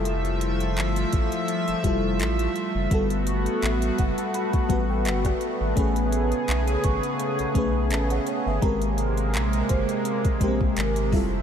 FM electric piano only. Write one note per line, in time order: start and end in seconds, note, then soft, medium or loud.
0.00 0.97 G3 medium
0.00 0.98 E4 medium
0.00 0.99 F4 medium
0.00 0.99 A4 medium
1.83 2.79 G3 medium
1.83 2.79 E4 medium
1.83 2.80 F4 medium
1.83 2.81 A4 loud
2.90 4.19 G3 medium
2.90 4.20 B3 medium
2.90 4.20 F#4 medium
2.90 4.21 A4 loud
3.99 4.17 F#5 medium
4.19 4.33 A5 medium
4.35 4.68 B5 medium
4.69 5.64 G3 medium
4.69 5.65 B3 medium
4.69 5.66 F#4 medium
4.69 5.66 B4 loud
4.69 4.88 F#5 medium
4.90 5.05 G5 medium
5.06 5.24 E5 medium
5.25 5.74 D5 medium
5.76 7.04 A3 medium
5.76 7.05 C#4 medium
5.76 7.06 G#4 medium
5.76 7.06 B4 medium
7.54 8.50 A3 medium
7.54 8.51 C#4 medium
7.54 8.51 G#4 medium
7.54 7.92 B4 medium
7.92 8.10 E5 medium
7.92 8.10 A5 medium
8.12 8.27 C#5 medium
8.12 8.27 F#5 medium
8.28 8.46 C#5 medium
8.28 8.46 G#5 medium
8.47 8.81 B4 medium
8.47 8.80 E5 medium
8.61 9.90 G#3 medium
8.61 9.91 C4 medium
8.61 9.91 G4 medium
8.61 9.92 A#4 loud
10.40 11.12 G#3 medium
10.40 10.48 A#3 medium
10.40 11.13 G4 medium
10.40 11.14 A#4 loud
10.48 11.16 C4 medium
11.12 11.42 G3 medium
11.12 11.42 E4 medium
11.12 11.42 F4 medium
11.12 11.42 A4 medium